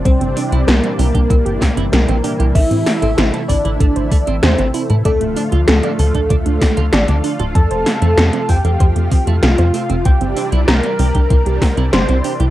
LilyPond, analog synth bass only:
\new Staff \with { instrumentName = "Analog synth bass" } { \clef bass \time 4/4 \key c \mixolydian \tempo 4 = 96 c,16 g,,16 r16 c,16 c,16 r16 c,16 c,16 c,16 g,,16 r16 g,,16 c,16 bes,,16 r16 c,16 | a,,16 a,16 r16 a,,16 a,,16 r16 a,,16 a,,16 a,,16 a,,16 r16 a,,16 e,16 a,,16 r16 a,16 | d,16 d,,16 r16 d,16 d,16 r16 d,16 d,16 d,16 d,16 r16 d,16 a,,16 d,16 r16 d,,16 | f,16 f,,16 r16 f,16 f,16 r16 f,16 f,16 f,16 f,16 r16 f,16 c,16 f,16 r16 f,,16 |
c,16 g,,16 r16 c,16 c,16 r16 c,16 c,16 c,16 c,16 r16 c,16 g,,16 c,16 r16 c,16 | }